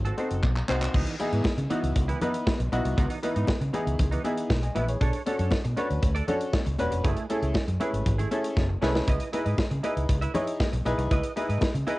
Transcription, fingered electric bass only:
0.31 0.40 F#1 medium
0.43 0.61 B1 medium
0.69 0.86 C2 medium
0.94 1.03 C#2 loud
1.32 1.41 G#2 medium
1.45 muted fingered electric bass stroke soft
1.58 1.66 C#3 loud
1.83 1.92 C#2 medium
1.96 2.13 C#2 medium
2.60 2.68 B1 medium
2.72 2.81 B1 loud
2.85 2.94 C2 medium
2.98 3.06 C#2 loud
3.36 3.45 G#2 medium
3.48 muted fingered electric bass stroke soft
3.61 3.70 C#3 loud
3.87 3.95 C#2 medium
3.99 4.17 C#2 medium
4.50 4.68 B1 loud
4.76 4.93 A#1 medium
5.01 5.10 B1 loud
5.39 5.48 F#2 medium
5.51 muted fingered electric bass stroke soft
5.65 5.73 B2 loud
5.90 5.99 D2 medium
6.03 6.20 D2 medium
6.66 6.75 C#2 loud
6.79 6.88 E1 medium
6.92 7.00 F1 medium
7.05 7.13 F#1 loud
7.42 7.51 C#2 medium
7.68 7.77 F#2 medium
7.93 8.02 G#1 medium
8.06 8.24 G#1 medium
8.57 8.74 F#1 loud
8.82 9.00 C2 medium
9.08 9.17 C#2 loud
9.46 9.55 G#2 medium
9.58 muted fingered electric bass stroke soft
9.71 9.80 C#3 loud
9.97 10.05 C#2 medium
10.09 10.27 C#2 medium
10.73 10.82 B1 medium
10.86 10.94 B1 medium
10.98 11.07 C2 loud
11.11 11.20 C#2 loud
11.49 11.58 G#2 medium
11.62 muted fingered electric bass stroke soft
11.74 11.83 C#3 loud

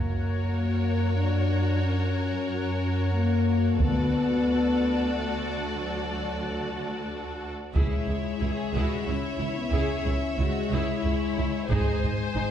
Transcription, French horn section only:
0.00 1.12 A#3 medium
1.17 1.82 D4 medium
1.83 3.14 C#4 medium
3.13 3.78 A#3 medium
3.79 5.08 B3 medium
5.12 5.78 A3 medium
5.78 7.09 F#3 soft
7.76 9.03 G#3 medium
9.07 9.56 C#4 medium
9.56 9.72 B3 soft
9.72 10.37 C#4 medium
10.37 11.68 G#3 medium
11.69 12.51 G#3 medium

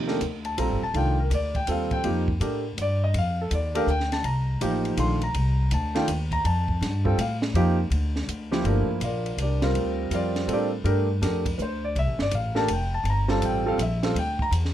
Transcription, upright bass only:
0.00 0.19 D#2 medium
0.20 0.56 D2 medium
0.58 0.70 A#1 medium
0.70 0.81 G1 soft
0.81 0.93 D#1 medium
0.94 1.30 C2 medium
1.30 1.66 D2 medium
1.67 2.03 D#2 medium
2.04 2.39 F2 medium
2.40 2.76 A2 medium
2.77 3.13 G2 medium
3.14 3.50 F2 medium
3.51 3.86 D#2 medium
3.87 4.23 D2 medium
4.23 4.59 C2 medium
4.61 4.97 A1 medium
4.97 5.33 A#1 medium
5.35 5.70 C2 medium
5.72 6.07 D2 medium
6.08 6.43 D#2 medium
6.44 6.80 F2 medium
6.81 7.17 G2 medium
7.18 7.53 A2 medium
7.54 7.90 F2 medium
7.90 8.26 D2 medium
8.28 8.63 D2 medium
8.64 8.86 G1 medium
8.88 muted upright bass stroke soft
9.00 9.36 A#1 medium
9.37 9.73 C2 medium
9.74 10.10 D2 medium
10.10 10.47 F2 medium
10.47 10.83 A2 medium
10.84 11.20 G2 medium
11.21 11.57 F2 medium
11.58 11.94 D2 medium
11.95 12.07 C2 medium
12.07 12.18 A1 soft
12.19 12.31 G1 medium
12.32 12.67 A1 medium
12.68 13.03 F1 medium
13.04 13.40 G1 medium
13.41 13.77 A1 medium
13.78 14.14 A#1 medium
14.14 14.51 D2 medium
14.51 14.74 E2 medium

